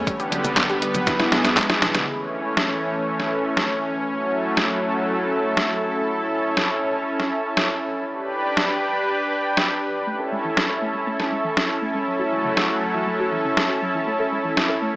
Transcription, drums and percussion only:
0.07 kick, closed hi-hat, cabasa
0.20 closed hi-hat, cabasa
0.32 closed hi-hat
0.45 closed hi-hat, high conga, cabasa
0.57 kick, snare, clap, closed hi-hat, cabasa
0.70 closed hi-hat, cabasa
0.82 closed hi-hat
0.95 closed hi-hat, high conga, cabasa
1.07 kick, snare, closed hi-hat, cabasa
1.20 snare, cabasa
1.32 snare, closed hi-hat
1.45 snare, closed hi-hat, cabasa
1.57 kick, snare, clap, closed hi-hat, cabasa
1.70 snare, closed hi-hat, cabasa
1.82 snare, closed hi-hat
1.95 snare, closed hi-hat, high conga, cabasa
2.57 snare
3.20 snare
3.57 snare
4.57 snare
5.57 snare
6.57 snare
7.20 snare
7.57 snare
8.57 snare
9.57 snare
10.57 snare
11.20 snare
11.57 snare
12.57 snare
13.57 snare
14.57 snare

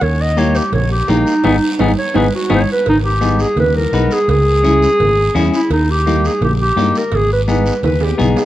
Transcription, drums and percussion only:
0.01 cowbell, long guiro
0.37 high conga, short guiro
0.55 short guiro
0.73 cowbell, low conga, long guiro
1.08 high conga, low timbale, short guiro
1.26 short guiro
1.44 high conga, high timbale, long guiro
1.79 high conga, high timbale, long guiro
2.14 high conga, high timbale, long guiro
2.50 high conga, high timbale, long guiro
2.86 cowbell, low conga, long guiro
3.21 high conga, short guiro
3.39 short guiro
3.57 cowbell, low conga, long guiro
3.76 high conga
3.93 high conga, low timbale, short guiro
4.11 short guiro
4.29 cowbell, low conga, long guiro
4.64 high conga, short guiro
4.82 short guiro
5.00 cowbell, low conga, long guiro
5.36 high conga, low timbale, short guiro
5.54 short guiro
5.71 cowbell, long guiro
6.07 high conga, short guiro
6.24 short guiro
6.42 cowbell, low conga, long guiro
6.77 high conga, low timbale, short guiro
6.95 short guiro
7.12 cowbell, low conga, long guiro
7.48 high conga, short guiro
7.66 short guiro
7.83 cowbell, low conga, high timbale, long guiro
8.01 low timbale
8.20 high conga, low conga, short guiro
8.37 low timbale, short guiro

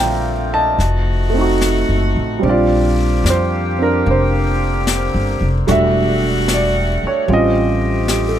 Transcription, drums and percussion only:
0.80 brush sweep, snare
1.61 snare, hi-hat pedal
2.44 brush sweep
3.26 snare, hi-hat pedal
4.06 brush sweep
4.87 snare, hi-hat pedal
5.68 brush sweep, snare
6.48 snare, hi-hat pedal
7.28 brush sweep
8.08 snare, hi-hat pedal

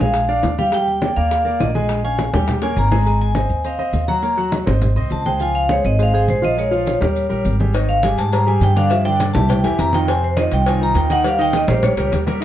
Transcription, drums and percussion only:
0.00 high bongo, maracas
0.14 high bongo, high conga, maracas
0.29 high bongo, high conga, maracas
0.43 high bongo, low bongo, high conga, maracas
0.58 high bongo, high conga, maracas
0.72 high bongo, high conga, maracas
0.88 high conga, maracas
1.02 high bongo, high conga, maracas
1.17 high bongo, maracas
1.31 high bongo, high conga, maracas
1.46 high bongo, high conga, maracas
1.60 high bongo, low bongo, high conga, maracas
1.75 high bongo, high conga, maracas
1.89 high bongo, high conga, maracas
2.04 high conga, maracas
2.19 high bongo, high conga, maracas
2.33 high bongo, high conga, low conga, maracas
2.48 high bongo, high conga, low conga, maracas
2.62 high bongo, high conga, maracas
2.77 high conga, maracas
2.91 low bongo, high conga, maracas
3.06 high conga, maracas
3.21 high conga, maracas
3.35 high conga, maracas
3.50 maracas
3.64 high conga, maracas
3.79 high conga, maracas
3.93 high conga, maracas
4.08 high conga, maracas
4.22 high conga, maracas
4.38 high conga, maracas
4.52 high conga, maracas
4.67 high conga, low conga, maracas
4.82 high conga, low conga, maracas
4.96 high conga, maracas
5.10 high conga, maracas
5.25 high conga, maracas
5.40 high conga, maracas
5.55 high conga, maracas
5.69 high conga, maracas
5.84 maracas
5.99 high conga, maracas
6.14 high conga, maracas
6.28 high conga, maracas
6.43 high conga, maracas
6.58 high conga, maracas
6.72 high conga, maracas
6.86 high conga, maracas
7.02 high conga, low conga, maracas
7.16 high conga, maracas
7.31 high conga, maracas
7.45 high conga, maracas
7.60 high conga, maracas
7.74 cowbell, high conga, maracas
7.89 high conga, maracas
8.03 cowbell, high conga, maracas
8.18 cowbell, maracas
8.32 cowbell, high conga, maracas
8.47 high conga, maracas
8.61 cowbell, high conga, maracas
8.76 cowbell, high conga, maracas
8.91 cowbell, high conga, maracas
9.06 high conga, maracas
9.20 cowbell, high conga, maracas
9.35 high conga, low conga, maracas
9.50 cowbell, high conga, low conga, maracas
9.64 cowbell, high conga, maracas
9.79 cowbell, high conga, maracas
9.93 cowbell, high conga, maracas
10.08 cowbell, high conga, maracas
10.22 high conga, maracas
10.37 cowbell, high conga, maracas
10.52 cowbell, maracas
10.66 cowbell, high conga, maracas
10.81 high conga, maracas
10.95 cowbell, high conga, maracas
11.10 cowbell, high conga, maracas
11.24 cowbell, high conga, maracas
11.39 high conga, maracas
11.53 cowbell, high conga, maracas
11.68 high conga, low conga, maracas
11.83 cowbell, high conga, low conga, maracas
11.97 cowbell, high conga, maracas
12.12 cowbell, high conga, maracas
12.27 cowbell, high conga, maracas

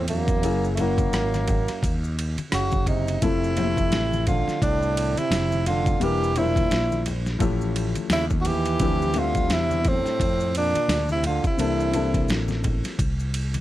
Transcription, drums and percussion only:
0.08 ride, low conga, maracas
0.28 kick, ride, maracas
0.43 ride, maracas
0.64 maracas
0.77 ride, low conga, maracas
0.98 kick, ride, high conga, maracas
1.13 cross-stick, hi-hat pedal, ride, maracas
1.34 cross-stick, high conga, maracas
1.48 kick, ride, low conga, maracas
1.68 cross-stick, ride, maracas
1.83 kick, ride, maracas
2.04 maracas
2.19 ride, maracas
2.38 ride, high conga, maracas
2.52 cross-stick, hi-hat pedal, ride, maracas
2.72 kick, high conga, maracas
2.86 kick, ride, low conga, maracas
3.08 ride, maracas
3.22 kick, ride, maracas
3.44 maracas
3.57 ride, low conga, maracas
3.77 kick, ride, high conga, maracas
3.92 snare, hi-hat pedal, ride, maracas
4.13 high conga, maracas
4.27 kick, ride, low conga, maracas
4.48 snare, maracas
4.62 kick, ride, maracas
4.82 maracas
4.97 ride, maracas
5.17 ride, high conga, maracas
5.32 snare, hi-hat pedal, ride, maracas
5.52 high conga, maracas
5.66 ride, low conga, maracas
5.86 kick, ride, maracas
6.01 ride, maracas
6.24 maracas
6.36 ride, low conga, maracas
6.56 kick, ride, high conga, maracas
6.71 snare, hi-hat pedal, ride, maracas
6.92 high conga, maracas
7.06 ride, low conga, maracas
7.26 snare, maracas
7.40 kick, ride, maracas
7.61 maracas
7.76 ride, maracas
7.95 ride, high conga, maracas
8.10 snare, hi-hat pedal, ride, maracas
8.30 kick, high conga, maracas
8.45 ride, low conga, maracas
8.66 ride, maracas
8.80 kick, ride, maracas
9.02 maracas
9.14 ride, low conga, maracas
9.35 kick, ride, high conga, maracas
9.50 snare, hi-hat pedal, ride, maracas
9.71 high conga, maracas
9.85 kick, ride, low conga, maracas
10.06 snare, maracas
10.20 kick, ride, maracas
10.40 maracas
10.55 ride, maracas
10.75 ride, high conga, maracas
10.89 snare, hi-hat pedal, ride, maracas
11.09 high conga, maracas
11.23 ride, low conga, maracas
11.44 kick, ride, maracas
11.58 ride, maracas
11.80 maracas
11.94 ride, low conga, maracas
12.14 kick, ride, high conga, maracas
12.28 snare, hi-hat pedal, ride, maracas
12.48 snare, high conga, maracas
12.64 kick, ride, low conga, maracas
12.84 snare, ride, maracas
12.99 kick, ride, maracas
13.19 maracas
13.34 ride, maracas
13.54 ride, high conga, maracas

